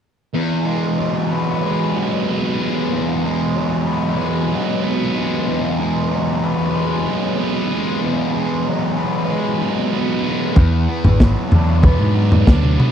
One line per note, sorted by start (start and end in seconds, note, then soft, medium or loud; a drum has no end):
0.34 1.98 E2 medium
0.66 1.62 G#3 medium
0.99 1.95 F#3 medium
1.31 2.28 B3 medium
1.63 2.59 G#3 medium
1.95 3.56 F#3 medium
2.28 3.86 B3 medium
2.60 3.24 G#3 medium
2.92 4.54 E2 medium
3.24 4.19 G#3 medium
3.56 4.51 F#3 medium
3.87 4.82 B3 medium
4.19 5.15 G#3 medium
4.51 6.11 F#3 medium
4.83 6.43 B3 medium
5.15 5.79 G#3 medium
5.48 7.07 E2 medium
5.80 6.73 G#3 medium
6.11 7.05 F#3 medium
6.44 7.38 B3 medium
6.74 7.69 G#3 medium
7.06 8.66 F#3 medium
7.39 8.96 B3 medium
7.71 8.33 G#3 medium
8.01 9.61 E2 medium
8.34 9.28 G#3 medium
8.66 9.60 F#3 medium
8.97 9.92 B3 medium
9.29 10.24 G#3 medium
9.60 10.59 F#3 medium
9.92 10.89 B3 medium
10.25 10.57 G#3 medium
10.56 12.15 E2 medium
10.56 10.86 E2 loud
10.56 kick loud
10.56 floor tom medium
10.89 11.83 B3 medium
11.04 11.33 G#1 medium
11.04 floor tom medium
11.20 12.14 F#3 medium
11.20 kick loud
11.20 snare medium
11.51 11.96 E2 medium
11.51 12.46 D4 medium
11.51 floor tom medium
11.83 12.77 B3 medium
11.83 kick loud
11.83 floor tom medium
11.83 mid tom medium
12.00 12.43 G#2 medium
12.15 12.92 F#3 medium
12.32 floor tom medium
12.47 12.76 D2 medium
12.47 12.92 D4 medium
12.47 kick loud
12.47 snare medium
12.63 mid tom medium
12.78 12.92 B3 medium
12.78 mid tom medium